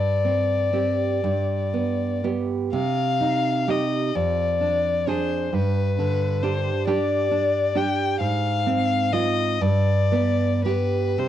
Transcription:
Already playing: G2 D5
0.25 C4
0.73 C4 G4
1.24 G2
1.74 B3
2.24 B3 G4
2.73 C3 F5
3.21 D#4
3.68 D#4 G4 D#5
4.15 F2 D5
4.60 D4
5.07 D4 G#4 C5
5.53 G2 B4
5.98 D3
6.43 D4 G4 C5
6.87 D4 G4 D5
7.31 D4
7.75 D4 G4 G5
8.20 G#2 F5
8.67 C4
9.13 C4 F4 D#5
9.61 G2 D5
10.12 B3
10.64 B3 G4 B4
11.18 C3 C5

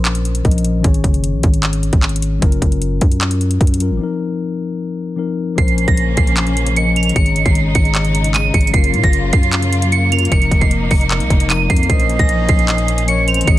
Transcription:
Already playing: A#1 F3 C#4 A#4 C5
0.05 clap, closed hi-hat
0.15 closed hi-hat
0.25 closed hi-hat
0.35 closed hi-hat
0.43 A#1 F3 C#4 A#4 D#5, kick, closed hi-hat
0.51 closed hi-hat
0.58 closed hi-hat
0.65 closed hi-hat
0.81 G#1 D#3 C#4, kick, closed hi-hat
0.85 G#4 C#5
0.94 closed hi-hat
1.04 F#1, kick, closed hi-hat
1.14 closed hi-hat
1.24 closed hi-hat
1.34 A#1
1.43 G#1, kick, closed hi-hat
1.54 closed hi-hat
1.63 clap, closed hi-hat
1.73 closed hi-hat
1.83 closed hi-hat
1.93 G#1, kick, closed hi-hat
2.03 clap, closed hi-hat
2.09 closed hi-hat
2.16 closed hi-hat
2.22 closed hi-hat
2.39 F#1 F#3 C#4, kick, closed hi-hat
2.43 F4 A#4
2.52 closed hi-hat
2.62 F#1, kick, closed hi-hat
2.72 closed hi-hat
2.82 closed hi-hat
3.01 F#2, kick, closed hi-hat
3.12 closed hi-hat
3.21 clap, closed hi-hat
3.31 closed hi-hat
3.41 closed hi-hat
3.51 closed hi-hat
3.61 F#2, kick, closed hi-hat
3.67 closed hi-hat
3.74 closed hi-hat
3.79 F#3 C#4 F4 A#4, closed hi-hat
3.90 G#1
3.97 F3 C4
4.01 D#4 A#4
5.16 F3 C4 D#4 A#4
5.55 A#1 C#3 F3 A#3 C#4 C7, kick, closed hi-hat
5.60 A#4 C5
5.68 closed hi-hat
5.78 closed hi-hat
5.88 A#1 A#6, kick, closed hi-hat
5.97 closed hi-hat
6.17 A#1 C7, kick, closed hi-hat
6.27 closed hi-hat
6.37 clap, closed hi-hat
6.47 closed hi-hat
6.57 closed hi-hat
6.67 closed hi-hat
6.75 F3 C#4 A#4 D#5 C#7, closed hi-hat
6.96 F7, closed hi-hat
7.03 closed hi-hat
7.09 D#3, closed hi-hat
7.15 G#1 C#3 D#3 G#3 C#4 D#4 G#4 C#7, kick, closed hi-hat
7.19 C#5
7.26 closed hi-hat
7.36 closed hi-hat
7.45 G#1 C7, kick, closed hi-hat
7.55 closed hi-hat
7.75 G#1 C#7, kick, closed hi-hat
7.85 closed hi-hat
7.95 clap, closed hi-hat
8.05 closed hi-hat
8.15 closed hi-hat
8.24 closed hi-hat
8.34 D#7, clap, closed hi-hat
8.54 G#1 C#7, kick, closed hi-hat
8.61 closed hi-hat
8.67 F#3, closed hi-hat
8.73 F#1 F#3 A#3 C#4 F4 C7, kick, closed hi-hat
8.77 A#4
8.84 closed hi-hat
8.94 A#2, closed hi-hat
9.04 F#1 A#6, kick, closed hi-hat
9.13 closed hi-hat
9.33 F#2 C7, kick, closed hi-hat
9.43 closed hi-hat
9.53 clap, closed hi-hat
9.62 closed hi-hat
9.73 closed hi-hat
9.82 closed hi-hat
9.92 C#7, closed hi-hat
10.11 F#3 C#4 F4 A#4 F7, closed hi-hat
10.19 closed hi-hat
10.25 F3, closed hi-hat
10.31 F1 A#2 F3 C4 D#4 C#7, kick, closed hi-hat
10.35 A#4
10.42 closed hi-hat
10.51 F1, kick, closed hi-hat
10.61 C7, kick, closed hi-hat
10.71 closed hi-hat
10.91 F1 C#7, kick, open hi-hat
11.01 closed hi-hat
11.11 clap, closed hi-hat
11.20 C2, closed hi-hat
11.30 F1, kick, closed hi-hat
11.40 closed hi-hat
11.47 F3 C4 D#4 A#4 D#7, clap, closed hi-hat
11.70 F2 C7, kick, closed hi-hat
11.77 closed hi-hat
11.83 closed hi-hat
11.87 A#1 F3 C#4 D#5 C7, kick, closed hi-hat
11.91 A#4 C5
12.00 closed hi-hat
12.10 closed hi-hat
12.19 A#1 A#6, kick, closed hi-hat
12.29 closed hi-hat
12.49 A#1 C7, kick, closed hi-hat
12.59 closed hi-hat
12.68 clap, closed hi-hat
12.78 closed hi-hat
12.88 closed hi-hat
12.98 closed hi-hat
13.06 F3 C#4 A#4 C#5 D#5 C#7, closed hi-hat
13.28 C5 F7, closed hi-hat
13.34 closed hi-hat
13.41 D#3, closed hi-hat
13.46 G#1 C#3 D#3 G#3 C#4 D#4 G#4 D#5 C#7, kick, closed hi-hat
13.50 C#5

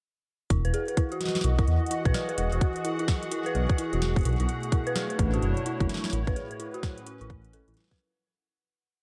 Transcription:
0.50 E1 E3 E4 F#4 F#5, kick, closed hi-hat
0.65 E1 B4, closed hi-hat
0.74 G#4, closed hi-hat
0.88 B4, closed hi-hat
0.94 E4 F#4, kick, closed hi-hat
1.11 F#4 D#5, closed hi-hat
1.21 snare, closed hi-hat
1.25 snare
1.28 snare
1.35 snare, closed hi-hat
1.41 B1 E4, snare, closed hi-hat
1.59 E4, kick, closed hi-hat
1.67 E2, closed hi-hat
1.85 G#4, closed hi-hat
1.91 E4, closed hi-hat
2.05 B1 B4, kick, closed hi-hat
2.14 G#4, snare, closed hi-hat
2.29 B4, closed hi-hat
2.38 E1 E4, closed hi-hat
2.52 E1 F#4, closed hi-hat
2.61 kick, closed hi-hat
2.76 closed hi-hat
2.85 E4, closed hi-hat
2.99 E4, closed hi-hat
3.08 kick, snare, closed hi-hat
3.23 closed hi-hat
3.31 E4, closed hi-hat
3.46 B4, closed hi-hat
3.55 B1 G#4, closed hi-hat
3.69 B4, kick, closed hi-hat
3.78 E4, closed hi-hat
3.93 E1 F#4, closed hi-hat
4.02 snare, closed hi-hat
4.16 kick, closed hi-hat
4.19 closed hi-hat
4.21 closed hi-hat
4.23 B2 E4, closed hi-hat
4.25 B1, closed hi-hat
4.33 closed hi-hat
4.36 E4, closed hi-hat
4.40 B1, closed hi-hat
4.49 A3, closed hi-hat
4.63 closed hi-hat
4.72 E4, kick, closed hi-hat
4.87 B4, closed hi-hat
4.96 G#4, snare, closed hi-hat
5.10 D4 E4 B4 C#5, closed hi-hat
5.19 A1 E4, kick, closed hi-hat
5.34 F#4, closed hi-hat
5.42 F#1, closed hi-hat
5.57 closed hi-hat
5.66 E4, closed hi-hat
5.80 F#1 E4, kick, closed hi-hat
5.89 snare, closed hi-hat
5.94 snare
5.97 snare
6.04 snare, closed hi-hat
6.10 A1 A2 E4, snare, closed hi-hat
6.27 A1 B4, kick, closed hi-hat
6.36 G#4, closed hi-hat
6.51 B4, closed hi-hat
6.60 E4, closed hi-hat
6.74 F#4, closed hi-hat
6.83 kick, snare, closed hi-hat
6.96 C#4, closed hi-hat
7.07 E4, closed hi-hat
7.21 A1 E4, closed hi-hat
7.30 kick, closed hi-hat
7.44 closed hi-hat
7.53 A4, closed hi-hat
7.68 A1 E4, closed hi-hat
7.74 snare, closed hi-hat
7.77 E4, snare, closed hi-hat
7.82 snare, closed hi-hat
7.88 B4, snare
7.91 kick, snare, closed hi-hat
7.94 snare, closed hi-hat
7.96 snare
7.98 snare

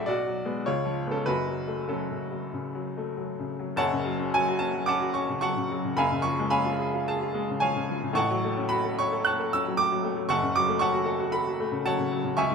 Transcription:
Already playing: A1 A2 A3 C#4 F#4 G#4 D5 E5
0.06 B1 F#4 D5
0.27 F#3
0.45 G#3 B3
0.66 C#2 F4 C#5
0.85 F3
1.07 G#3 B3
1.11 C#4 A4
1.26 F#1 F#2 F#4 B4
1.48 F#3
1.68 A3
1.89 F#3 C#4 A4
2.11 C#3
2.31 F#3
2.54 C#3
2.75 F#3
2.98 A3
3.17 F#3
3.40 C#3
3.59 F#3
3.76 F#1 F#2 C#5 F#5 A5
3.92 C#3
4.06 F#3
4.19 C#4
4.34 F#3 G#5
4.48 F#4
4.59 C#4 A5
4.74 F#3
4.86 C#4 F#5 A5 D6
5.00 F#4
5.14 C#4 C#6
5.29 C#3
5.41 F#3 F#5 A5 C#6
5.57 C#3
5.72 F#3
5.85 C#3
5.97 F#1 F#2 F5 G#5 B5
6.12 C#3
6.22 F3 C#6
6.39 G#3
6.50 C#4 F5 G#5 B5
6.65 F4
6.79 G#4
6.94 F4
7.08 G#4 A5
7.21 F4
7.34 G#3
7.50 C#3
7.60 F3 C#5 F5 G#5
7.76 C#3
7.89 F3
8.03 C#3
8.13 A1 A2 F#5 A5 C#6
8.31 F#3
8.45 A3
8.57 C#4
8.69 F#4 B5
8.85 A4
8.99 C#5 C#6
9.12 A4
9.25 C#5 A5 C#6 F#6
9.40 A4
9.53 C#4 E6
9.68 F#3
9.77 A3 D6
9.92 F#3
10.04 A3
10.17 F#3
10.29 F#1 F#2 F#5 A5 C#6
10.43 C#3
10.56 F#3 D6
10.69 A3
10.79 C#4 F#5 A5 C#6
10.93 F#4
11.05 A4
11.20 F#4
11.32 A4 B5
11.47 F#4
11.60 A3
11.72 C#3
11.86 F#3 C#5 F#5 A5
11.99 C#3
12.12 F#3
12.25 C#3
12.37 C#2 E5 G#5 C#6
12.50 G#2

